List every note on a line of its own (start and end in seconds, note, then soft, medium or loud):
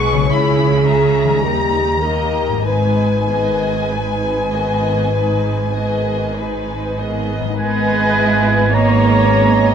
0.00 0.26 B1 medium
0.00 0.26 B2 soft
0.00 0.27 B2 medium
0.00 0.16 G#3 soft
0.00 0.30 G#3 soft
0.00 0.31 B3 soft
0.00 0.30 D#4 soft
0.00 0.28 G#4 medium
0.00 0.31 G#4 soft
0.00 0.31 B4 soft
0.00 0.32 D#5 soft
0.00 0.30 C#6 medium
0.12 1.39 C#3 soft
0.17 1.41 G#3 soft
0.21 1.43 E4 soft
0.26 1.43 C#2 soft
0.26 1.40 G#4 medium
0.26 1.45 C#5 soft
0.30 1.43 C#3 medium
0.30 0.82 E3 soft
0.30 0.82 E4 soft
0.30 0.82 C#5 soft
0.30 0.86 B5 medium
0.85 1.43 G#3 soft
0.85 1.43 C#4 soft
0.85 1.43 G#4 soft
0.85 1.44 E5 soft
0.85 2.67 A#5 medium
1.24 2.62 D#3 soft
1.29 2.65 G3 soft
1.33 2.56 D#4 soft
1.38 2.69 A#4 soft
1.42 2.66 D#2 soft
1.42 2.67 D#2 soft
1.42 1.99 G3 soft
1.42 1.99 D#4 soft
1.42 2.03 G4 soft
1.42 2.00 A#4 soft
2.02 2.67 D#3 soft
2.02 2.67 A#3 soft
2.02 2.67 G4 soft
2.02 2.66 A#4 soft
2.02 2.67 D#5 soft
2.48 6.38 G#2 soft
2.53 6.43 G#3 soft
2.57 6.47 D#4 soft
2.62 7.33 G#1 soft
2.62 6.52 B4 soft
2.66 7.34 G#2 soft
2.66 3.26 G#3 soft
2.66 3.26 D#4 soft
2.66 6.95 B4 medium
2.66 3.26 B4 soft
2.66 6.95 G#5 medium
3.30 3.92 D#3 soft
3.30 3.92 B3 soft
3.30 3.92 G#4 soft
3.30 3.92 D#5 soft
3.92 4.53 G#3 soft
3.92 4.53 D#4 soft
3.92 4.53 B4 soft
4.53 5.15 D#3 soft
4.53 5.15 B3 soft
4.53 5.14 G#4 soft
4.53 5.15 D#5 soft
5.15 5.72 G#3 soft
5.15 5.73 D#4 soft
5.15 5.72 B4 soft
5.76 6.37 D#3 soft
5.76 6.38 B3 soft
5.76 6.38 G#4 soft
5.76 6.37 D#5 soft
6.36 6.99 G#3 soft
6.36 6.99 D#4 soft
6.36 6.99 B4 soft
6.98 7.59 D#3 soft
6.98 7.59 B3 soft
6.98 7.58 G#4 soft
6.98 7.58 D#5 soft
7.40 9.74 G#2 soft
7.45 9.74 G#3 soft
7.49 9.74 D#4 soft
7.54 9.74 G#1 medium
7.54 9.74 B4 soft
7.54 8.68 D#5 medium
7.59 8.68 G#3 medium
7.59 9.74 G#3 medium
7.59 8.12 B3 medium
7.59 9.74 B3 medium
7.59 8.69 G#4 medium
7.59 8.69 B4 medium
7.59 8.75 G#5 medium
8.15 8.71 E4 medium
8.72 9.74 A#3 medium
8.72 9.28 D#4 medium
8.72 9.74 C#5 medium
8.72 9.74 D#5 medium
8.72 9.74 A#5 medium
9.28 9.74 C#4 medium